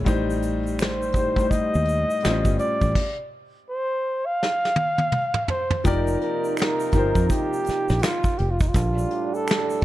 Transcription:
0.05 1.15 A1 medium
0.05 0.89 A2 loud
0.05 0.90 G3 loud
0.05 0.90 D#4 loud
0.05 0.91 C5 loud
0.05 kick loud
0.05 closed hi-hat medium
0.05 shaker medium
0.30 shaker soft
0.42 closed hi-hat medium
0.42 shaker medium
0.63 closed hi-hat soft
0.63 shaker soft
0.79 1.52 C5 medium
0.79 finger snap medium
0.79 snare loud
0.79 closed hi-hat loud
0.79 shaker medium
1.02 shaker soft
1.12 1.44 G1 medium
1.12 1.31 A2 medium
1.12 1.32 G3 medium
1.12 kick medium
1.12 closed hi-hat medium
1.12 shaker soft
1.17 1.33 D#4 medium
1.17 1.33 C5 medium
1.36 2.21 A2 medium
1.36 2.22 G3 medium
1.36 2.24 D#4 medium
1.36 kick medium
1.36 closed hi-hat soft
1.36 shaker soft
1.40 2.25 C5 medium
1.50 2.59 D#5 loud
1.50 muted fingered electric bass stroke soft
1.50 kick medium
1.50 closed hi-hat medium
1.50 shaker medium
1.74 2.04 D#2 medium
1.74 shaker soft
1.85 closed hi-hat medium
1.85 shaker soft
2.10 shaker soft
2.20 2.84 A2 medium
2.20 2.84 G3 medium
2.20 closed hi-hat medium
2.25 2.43 A1 medium
2.25 2.32 C4 medium
2.25 2.85 F4 medium
2.25 2.86 C5 medium
2.25 finger snap medium
2.25 snare medium
2.25 shaker medium
2.31 2.88 C#4 medium
2.45 2.57 G1 medium
2.45 kick medium
2.45 shaker medium
2.59 3.28 D5 loud
2.59 closed hi-hat medium
2.59 shaker soft
2.81 2.94 A1 medium
2.81 kick medium
2.81 closed hi-hat soft
2.81 shaker soft
2.95 kick loud
2.95 crash medium
3.69 4.28 C5 medium
4.26 5.49 F5 loud
4.43 snare medium
4.65 snare soft
4.76 high tom medium
4.98 high tom medium
5.12 mid tom medium
5.34 mid tom medium
5.48 5.87 C5 medium
5.48 floor tom medium
5.70 floor tom medium
5.84 6.15 F1 medium
5.84 8.34 C3 medium
5.84 6.68 F3 medium
5.84 8.34 A#3 medium
5.84 8.34 D#4 medium
5.84 6.68 D#4 medium
5.84 6.69 G4 medium
5.84 6.21 A#4 medium
5.84 6.69 A#4 medium
5.84 6.70 D5 loud
5.84 kick loud
5.84 closed hi-hat medium
5.84 shaker medium
6.07 shaker soft
6.21 6.55 A#4 medium
6.21 closed hi-hat medium
6.44 shaker soft
6.57 7.26 A#4 medium
6.57 finger snap medium
6.57 closed hi-hat loud
6.57 shaker medium
6.62 snare loud
6.80 shaker soft
6.91 7.11 G1 medium
6.91 8.02 F3 medium
6.91 8.02 D#4 medium
6.91 8.03 G4 medium
6.91 kick medium
6.91 closed hi-hat medium
6.91 shaker soft
6.96 8.03 A#4 medium
6.96 8.04 C5 medium
7.15 7.28 F2 medium
7.15 kick loud
7.15 closed hi-hat soft
7.15 shaker soft
7.30 8.04 G4 medium
7.30 kick medium
7.30 closed hi-hat medium
7.30 shaker medium
7.53 shaker soft
7.64 closed hi-hat medium
7.64 shaker soft
7.69 muted fingered electric bass stroke soft
7.69 snare soft
7.89 8.01 A#1 medium
7.89 snare soft
7.89 closed hi-hat soft
7.89 shaker soft
7.99 8.40 F4 medium
7.99 closed hi-hat medium
8.03 finger snap medium
8.03 snare loud
8.03 shaker medium
8.24 muted fingered electric bass stroke soft
8.24 kick loud
8.24 shaker medium
8.38 8.69 F1 medium
8.38 8.52 G4 medium
8.38 closed hi-hat medium
8.50 8.63 F4 medium
8.60 8.70 D#4 medium
8.60 kick loud
8.60 shaker soft
8.68 8.75 F4 medium
8.74 9.04 A#1 loud
8.74 9.85 A2 medium
8.74 9.85 G3 medium
8.74 9.85 D4 medium
8.74 9.35 F4 medium
8.74 kick loud
8.74 closed hi-hat medium
8.74 shaker medium
8.98 shaker soft
9.11 closed hi-hat medium
9.34 9.83 A4 loud
9.34 shaker soft
9.48 finger snap medium
9.48 snare loud
9.48 closed hi-hat loud
9.48 shaker medium
9.70 shaker soft
9.81 closed hi-hat medium

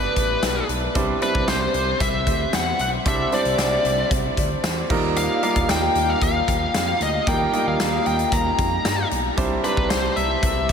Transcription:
0.00 0.95 G3 medium
0.00 0.98 B3 medium
0.00 0.95 D4 medium
0.00 0.96 E4 medium
0.00 0.66 B4 medium
0.00 0.97 B4 medium
0.16 0.36 A1 loud
0.16 kick medium
0.16 closed hi-hat medium
0.43 0.62 B1 medium
0.43 snare loud
0.43 closed hi-hat loud
0.43 tambourine medium
0.69 0.88 B1 medium
0.69 closed hi-hat medium
0.95 1.14 C2 loud
0.95 1.16 G3 medium
0.95 1.16 C4 medium
0.95 1.16 D4 medium
0.95 1.16 E4 medium
0.95 1.17 C5 loud
0.95 kick loud
0.95 closed hi-hat loud
1.21 2.04 G3 medium
1.21 2.04 C4 medium
1.21 2.04 D4 medium
1.21 2.05 E4 medium
1.21 1.48 B4 medium
1.21 2.05 B5 medium
1.21 closed hi-hat medium
1.35 1.44 C2 loud
1.35 kick loud
1.48 1.67 C2 loud
1.48 2.03 C5 loud
1.48 snare loud
1.48 closed hi-hat medium
1.48 tambourine medium
1.74 1.93 C2 loud
1.74 closed hi-hat medium
2.00 2.28 C2 loud
2.00 2.55 E5 loud
2.00 kick loud
2.00 closed hi-hat medium
2.27 2.46 D2 loud
2.27 kick medium
2.27 closed hi-hat medium
2.53 2.72 E2 medium
2.53 2.80 F#5 loud
2.53 snare loud
2.53 closed hi-hat medium
2.53 tambourine medium
2.79 2.98 B1 medium
2.79 2.88 F#5 loud
2.79 closed hi-hat medium
3.05 3.25 C2 loud
3.05 3.26 G3 medium
3.05 3.27 C4 medium
3.05 3.27 D4 medium
3.05 3.27 E4 medium
3.05 3.27 C5 medium
3.05 3.34 E5 loud
3.05 kick loud
3.05 closed hi-hat loud
3.31 4.15 G3 medium
3.31 4.15 C4 medium
3.31 4.15 D4 medium
3.31 4.15 E4 medium
3.31 4.15 C5 medium
3.31 4.08 D5 loud
3.31 closed hi-hat medium
3.45 3.55 C2 loud
3.45 closed hi-hat medium
3.58 3.77 C2 loud
3.58 snare loud
3.58 closed hi-hat medium
3.58 tambourine medium
3.85 4.04 C2 loud
3.85 closed hi-hat medium
4.11 4.30 C2 loud
4.11 kick loud
4.11 closed hi-hat medium
4.37 4.57 D2 loud
4.37 kick medium
4.37 closed hi-hat medium
4.64 4.83 E2 loud
4.64 snare loud
4.64 closed hi-hat loud
4.64 tambourine medium
4.89 5.28 D#2 loud
4.89 5.32 G3 medium
4.89 5.32 A#3 medium
4.89 5.32 D#4 medium
4.89 5.32 F4 medium
4.89 5.33 A#4 loud
4.89 kick loud
4.89 crash medium
5.16 5.42 F5 medium
5.16 closed hi-hat loud
5.42 6.25 G3 medium
5.42 6.25 A#3 medium
5.42 6.26 D#4 medium
5.42 6.26 F4 medium
5.42 6.26 A#4 medium
5.42 5.68 F5 medium
5.42 closed hi-hat medium
5.55 5.65 D#2 medium
5.55 kick loud
5.55 closed hi-hat medium
5.69 5.88 D#2 loud
5.69 6.11 G5 loud
5.69 snare loud
5.69 closed hi-hat loud
5.69 tambourine medium
5.95 6.14 D#2 loud
5.95 closed hi-hat medium
6.10 6.21 F5 medium
6.21 6.41 D#2 loud
6.21 7.02 F5 loud
6.21 kick loud
6.21 closed hi-hat medium
6.48 6.67 D#2 medium
6.48 kick medium
6.48 closed hi-hat medium
6.74 6.93 F2 medium
6.74 snare loud
6.74 closed hi-hat loud
6.74 tambourine medium
7.00 7.20 D2 medium
7.00 7.29 D#5 medium
7.00 closed hi-hat medium
7.26 7.46 D#2 loud
7.26 7.47 G3 medium
7.26 7.48 A#3 medium
7.26 7.48 D#4 medium
7.26 7.48 F4 medium
7.26 7.48 A#4 medium
7.26 7.64 G5 loud
7.26 kick loud
7.26 closed hi-hat loud
7.53 8.36 G3 medium
7.53 8.36 A#3 medium
7.53 8.36 D#4 medium
7.53 8.36 F4 medium
7.53 8.37 A#4 medium
7.53 closed hi-hat medium
7.67 7.76 D#2 loud
7.67 7.80 F5 loud
7.80 7.99 D#2 loud
7.80 8.07 F5 loud
7.80 snare loud
7.80 closed hi-hat medium
7.80 tambourine medium
8.06 8.25 D#2 loud
8.06 8.34 G5 loud
8.06 closed hi-hat medium
8.19 closed hi-hat medium
8.32 8.51 D#2 loud
8.32 9.07 A#5 loud
8.32 kick loud
8.32 closed hi-hat loud
8.59 8.78 F2 loud
8.59 kick medium
8.59 closed hi-hat medium
8.85 9.04 G2 loud
8.85 snare loud
8.85 closed hi-hat loud
8.85 tambourine medium
9.11 9.30 B1 medium
9.11 closed hi-hat medium
9.37 9.57 C2 loud
9.37 9.58 G3 medium
9.37 9.58 C4 medium
9.37 9.58 D4 medium
9.37 9.58 E4 medium
9.37 9.59 C5 loud
9.37 kick loud
9.37 closed hi-hat loud
9.63 10.46 G3 medium
9.63 10.46 C4 medium
9.63 10.47 D4 medium
9.63 10.47 E4 medium
9.63 9.90 B4 medium
9.63 10.47 C5 medium
9.63 closed hi-hat medium
9.77 9.87 C2 loud
9.77 kick loud
9.90 10.09 C2 loud
9.90 10.15 C5 loud
9.90 snare loud
9.90 closed hi-hat loud
9.90 tambourine medium
10.16 10.36 C2 loud
10.16 10.72 E5 loud
10.16 closed hi-hat medium
10.43 10.71 C2 loud
10.43 kick loud
10.43 closed hi-hat medium

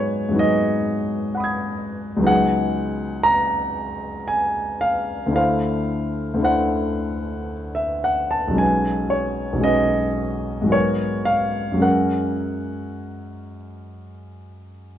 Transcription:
0.00 0.27 G#2 soft
0.00 0.30 F#3 soft
0.00 0.32 B3 soft
0.00 0.34 D#4 soft
0.00 0.37 G#4 soft
0.00 2.29 B4 medium
0.00 0.40 C#5 medium
0.29 2.17 G#2 soft
0.29 2.17 F#3 soft
0.34 2.19 B3 soft
0.34 2.21 D#4 soft
0.39 2.23 G#4 soft
0.39 2.27 D#5 medium
1.35 2.24 F#5 soft
1.35 2.26 B5 soft
1.40 2.27 D#6 soft
1.40 2.29 G#6 soft
2.17 5.28 C#2 soft
2.17 5.29 F#3 soft
2.21 5.30 B3 soft
2.21 5.32 D#4 soft
2.27 5.33 G#4 soft
2.27 3.25 F#5 medium
3.23 4.28 A#5 medium
4.28 4.82 G#5 medium
4.81 5.34 F5 medium
5.26 6.33 D2 soft
5.26 6.35 D3 soft
5.31 6.37 A3 soft
5.31 6.40 E4 soft
5.36 6.41 C5 soft
5.36 6.44 F5 medium
6.34 8.51 D2 soft
6.34 8.53 D3 soft
6.39 8.54 A3 soft
6.39 8.55 E4 soft
6.43 8.56 C5 soft
6.43 7.51 F#5 medium
7.75 8.05 E5 soft
8.04 8.33 F#5 medium
8.31 8.59 A5 medium
8.48 9.51 B1 soft
8.48 9.54 F#3 soft
8.53 9.57 G#3 soft
8.53 9.59 C#4 soft
8.58 9.62 B4 soft
8.58 9.12 G#5 medium
9.10 9.65 C#5 medium
9.53 10.64 B1 soft
9.53 10.62 F#3 soft
9.58 10.65 G#3 soft
9.58 10.68 C#4 soft
9.63 10.70 B4 soft
9.63 10.73 D#5 medium
10.62 11.74 G#2 soft
10.62 11.72 F#3 soft
10.66 11.75 G#3 soft
10.66 11.78 B3 soft
10.71 11.79 A#4 soft
10.71 11.28 C#5 medium
11.25 11.82 F5 medium
11.72 14.98 F#2 soft
11.72 14.98 F#3 soft
11.77 14.98 G#3 soft
11.77 14.98 C#4 soft
11.82 14.98 A#4 soft
11.82 14.68 F#5 medium

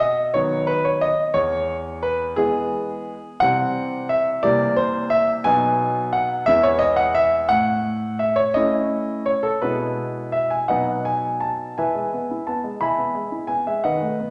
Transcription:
0.00 0.31 B2 medium
0.00 0.34 D#5 medium
0.34 1.08 D#3 soft
0.34 1.07 F#3 soft
0.34 1.08 B3 medium
0.34 0.68 C#5 medium
0.67 0.84 B4 medium
0.85 1.01 C#5 medium
1.01 1.32 D#5 medium
1.34 2.33 E2 medium
1.34 1.75 C#5 medium
2.03 2.23 B4 medium
2.36 3.12 E3 medium
2.36 3.13 G#3 medium
2.36 3.13 B3 medium
2.36 3.37 G#4 medium
3.40 4.40 C3 medium
3.40 4.39 E3 soft
3.40 4.39 G3 medium
3.40 4.40 C4 medium
3.40 4.09 F#5 loud
4.09 4.43 E5 medium
4.43 5.42 C3 medium
4.43 5.42 E3 medium
4.43 5.42 G3 medium
4.43 5.42 A#3 medium
4.43 4.74 D5 loud
4.76 5.11 C5 medium
5.10 5.31 E5 loud
5.44 6.44 B2 medium
5.44 6.43 F#3 medium
5.44 6.44 B3 medium
5.44 6.44 D#4 medium
5.44 6.09 G#5 loud
6.13 6.47 F#5 medium
6.46 7.47 E2 medium
6.46 7.46 G#3 medium
6.46 7.47 B3 medium
6.46 7.47 E4 medium
6.46 6.64 E5 loud
6.63 6.81 C#5 loud
6.79 6.97 D#5 loud
6.96 7.15 F#5 loud
7.15 7.46 E5 loud
7.49 8.52 A2 medium
7.49 8.19 F#5 loud
8.19 8.37 E5 medium
8.36 8.55 C#5 medium
8.54 9.33 A3 medium
8.54 9.33 C#4 soft
8.54 9.33 E4 medium
8.54 9.26 D#5 loud
9.26 9.44 C#5 medium
9.43 9.62 A4 medium
9.62 10.67 B2 medium
9.62 10.66 G#3 soft
9.62 10.66 B3 soft
9.62 10.67 E4 soft
9.62 10.68 B4 medium
10.32 10.51 E5 medium
10.50 10.69 G#5 medium
10.68 11.73 B2 medium
10.68 11.72 F#3 soft
10.68 11.72 B3 soft
10.68 11.72 D#4 soft
10.68 11.03 B4 soft
10.68 11.03 D#5 medium
10.68 11.05 F#5 medium
11.05 11.41 G#5 medium
11.41 11.73 A5 medium
11.78 11.94 E3 soft
11.78 12.43 B4 medium
11.78 12.43 E5 soft
11.78 12.46 G#5 medium
11.95 12.13 G#3 soft
12.14 12.31 B3 soft
12.31 12.48 E4 soft
12.47 12.65 B3 soft
12.47 12.81 A5 medium
12.64 12.82 G#3 soft
12.81 12.97 E3 soft
12.81 13.46 E5 medium
12.81 13.46 G#5 soft
12.81 13.22 B5 medium
12.98 13.16 B3 soft
13.14 13.32 G#3 soft
13.32 13.50 E4 soft
13.47 13.66 B3 soft
13.47 13.65 G#5 medium
13.67 13.84 G#3 soft
13.67 13.84 E5 medium
13.84 14.00 D#3 soft
13.84 14.30 B4 medium
13.84 14.30 D#5 soft
13.84 14.30 F#5 medium
14.02 14.19 A3 soft
14.20 14.30 B3 soft

